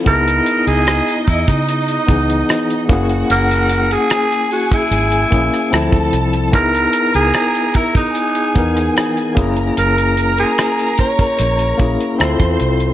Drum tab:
HH |xxxxxxxxxxxxxxxx|xxxxxxoxxxxxxxxx|xxxxxxxxxxxxxxxx|xxxxxxxxxxxxxxxx|
SD |----r--r----r---|----r--r---rr---|----r------rr---|----r-------r---|
BD |o-----oo--o---o-|-------o--o--o--|o-----oo--o---o-|------oo--o--o--|